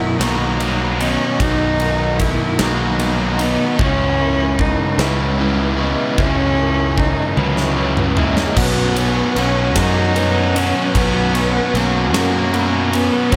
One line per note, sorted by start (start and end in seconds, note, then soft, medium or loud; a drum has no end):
0.00 0.18 B2 medium
0.00 0.19 D#3 loud
0.00 0.19 F#3 medium
0.00 0.20 B3 loud
0.00 1.71 B3 medium
0.00 0.19 D#4 medium
0.00 0.23 E4 loud
0.00 0.19 F#4 medium
0.00 3.75 F#4 medium
0.00 0.21 A#4 medium
0.00 3.76 D#5 medium
0.00 1.38 F#5 medium
0.19 1.16 B1 medium
0.19 0.58 B2 medium
0.19 0.58 D#3 loud
0.19 0.58 F#3 medium
0.19 1.00 A#3 medium
0.19 0.59 B3 loud
0.19 0.59 D#4 loud
0.19 1.78 F#4 medium
0.19 1.00 B5 medium
0.19 snare loud
0.19 ride loud
0.59 0.98 B2 medium
0.59 0.99 D#3 medium
0.59 0.99 F#3 medium
0.59 1.01 B3 medium
0.59 1.00 D#4 medium
0.59 ride medium
1.00 1.38 B2 medium
1.00 1.38 D#3 medium
1.00 1.39 F#3 medium
1.00 1.40 B3 loud
1.00 1.42 C#4 loud
1.00 1.39 D#4 medium
1.00 1.40 D#5 medium
1.00 ride medium
1.39 2.36 B1 medium
1.39 2.58 B2 medium
1.39 2.58 D#3 medium
1.39 2.58 F#3 medium
1.39 2.60 B3 loud
1.39 2.59 D#4 loud
1.39 2.21 D#4 loud
1.39 8.53 G#5 medium
1.39 kick loud
1.39 ride medium
1.79 2.59 F#4 medium
1.79 2.60 A#4 medium
1.79 ride medium
2.20 2.63 E4 loud
2.20 kick medium
2.20 ride medium
2.59 3.56 B1 medium
2.59 2.98 B2 medium
2.59 2.98 D#3 loud
2.59 2.98 F#3 loud
2.59 3.44 A#3 medium
2.59 2.99 B3 loud
2.59 2.99 D#4 loud
2.59 3.80 F#4 medium
2.59 3.39 B5 medium
2.59 snare loud
2.59 ride medium
2.99 3.38 B2 medium
2.99 3.38 D#3 medium
2.99 3.38 F#3 medium
2.99 3.39 B3 medium
2.99 3.39 D#4 medium
2.99 ride medium
3.39 3.77 B2 loud
3.39 3.77 D#3 medium
3.39 3.77 F#3 loud
3.39 3.80 B3 medium
3.39 3.80 B3 loud
3.39 3.78 D#4 loud
3.39 3.79 D#5 medium
3.39 ride medium
3.79 4.75 C#2 loud
3.79 4.97 C#3 loud
3.79 8.53 E3 medium
3.79 4.97 G#3 loud
3.79 4.99 C#4 loud
3.79 4.62 C#4 loud
3.79 4.98 E4 loud
3.79 8.53 C#5 medium
3.79 kick loud
4.19 4.99 E4 medium
4.19 4.99 A#4 medium
4.59 5.38 B3 medium
4.59 5.02 D#4 loud
4.59 kick medium
4.98 5.94 C#2 loud
4.98 5.37 C#3 loud
4.98 5.37 G#3 loud
4.98 5.82 G#3 medium
4.98 5.39 C#4 loud
4.98 5.38 E4 loud
4.98 5.78 B4 medium
4.98 snare loud
5.39 5.78 C#3 medium
5.39 5.78 G#3 medium
5.39 7.38 B3 medium
5.39 5.79 C#4 medium
5.39 5.78 E4 loud
5.78 6.17 C#3 medium
5.78 6.18 G#3 medium
5.78 6.22 B3 medium
5.78 6.18 C#4 medium
5.78 6.18 E4 loud
5.78 6.18 D#5 medium
6.18 7.14 C#2 medium
6.18 7.35 C#3 medium
6.18 7.36 G#3 loud
6.18 7.36 C#4 loud
6.18 7.00 C#4 loud
6.18 7.36 E4 loud
6.18 kick loud
6.57 7.37 A#4 medium
6.98 7.37 D#4 medium
6.98 kick medium
7.37 8.33 C#2 loud
7.37 7.75 C#3 loud
7.37 8.13 F#3 medium
7.37 7.75 G#3 loud
7.37 7.75 C#4 loud
7.37 7.76 E4 loud
7.37 8.17 B4 medium
7.37 high tom medium
7.57 snare medium
7.76 8.16 C#3 medium
7.76 8.16 G#3 medium
7.76 8.16 C#4 medium
7.76 8.17 E4 loud
7.97 mid tom medium
8.17 8.54 C#3 medium
8.17 8.55 G#3 medium
8.17 8.58 A#3 medium
8.17 8.55 C#4 loud
8.17 8.55 E4 loud
8.17 8.57 D#5 medium
8.17 floor tom medium
8.37 snare loud
8.56 9.21 B1 loud
8.56 9.40 B2 loud
8.56 9.35 F#3 loud
8.56 9.38 B3 loud
8.56 8.99 B3 loud
8.56 8.98 C#4 medium
8.56 13.36 F#4 medium
8.56 8.97 F#4 medium
8.56 9.36 B4 loud
8.56 13.36 C#5 medium
8.56 13.29 F#5 medium
8.56 kick loud
8.56 crash loud
8.96 9.35 F#3 medium
8.96 9.36 B3 medium
8.96 9.37 C#4 medium
8.96 9.38 F#4 medium
8.96 ride medium
9.35 9.76 B1 medium
9.35 9.76 B2 medium
9.35 10.15 F#3 medium
9.35 9.77 B3 medium
9.35 9.77 C#4 loud
9.35 9.77 C#4 medium
9.35 9.76 F#4 medium
9.35 ride medium
9.75 10.72 F#2 medium
9.75 10.12 B2 medium
9.75 10.14 F#3 medium
9.75 12.14 F#3 medium
9.75 10.15 B3 medium
9.75 10.17 C#4 medium
9.75 10.57 D#4 loud
9.75 10.17 F#4 medium
9.75 10.15 A#4 medium
9.75 kick medium
9.75 snare loud
9.75 ride loud
10.13 10.92 B2 medium
10.13 10.95 F#3 medium
10.13 10.57 B3 medium
10.13 10.56 C#4 medium
10.13 10.93 B4 medium
10.13 ride medium
10.18 10.56 F#4 medium
10.55 10.95 B3 medium
10.55 10.97 C#4 loud
10.55 10.96 C#4 medium
10.55 10.97 F#4 medium
10.55 ride medium
10.94 11.59 B1 loud
10.94 11.74 B2 loud
10.94 11.74 F#3 medium
10.94 11.76 B3 loud
10.94 11.35 B3 medium
10.94 11.35 C#4 loud
10.94 11.33 F#4 loud
10.94 11.74 B4 loud
10.94 kick loud
10.94 ride loud
11.34 11.73 F#3 medium
11.34 11.73 B3 medium
11.34 11.75 C#4 medium
11.34 11.76 F#4 medium
11.34 ride medium
11.72 12.13 B1 medium
11.72 12.14 B2 medium
11.72 12.51 F#3 medium
11.72 12.13 A#3 loud
11.72 12.14 B3 medium
11.72 12.12 C#4 medium
11.72 12.12 F#4 medium
11.72 ride medium
12.13 13.09 F#2 medium
12.13 12.50 B2 medium
12.13 13.33 F#3 medium
12.13 12.51 F#3 medium
12.13 12.95 A#3 loud
12.13 12.52 B3 medium
12.13 12.52 C#4 medium
12.13 12.52 F#4 medium
12.13 12.53 A#4 medium
12.13 snare loud
12.13 ride loud
12.51 13.29 B2 medium
12.51 13.29 F#3 medium
12.51 12.92 B3 medium
12.51 12.91 C#4 medium
12.51 12.90 F#4 medium
12.51 13.32 B5 medium
12.51 ride medium
12.91 13.30 B3 medium
12.91 13.34 B3 loud
12.91 13.30 C#4 medium
12.91 13.29 F#4 medium
12.91 ride medium
13.30 13.36 B1 loud
13.30 13.36 B2 medium
13.30 13.36 F#3 medium
13.30 13.36 A#3 loud
13.30 13.36 C#4 loud
13.30 13.36 F#4 loud
13.30 13.36 C#5 loud
13.30 13.36 A#5 medium
13.30 kick loud
13.30 ride loud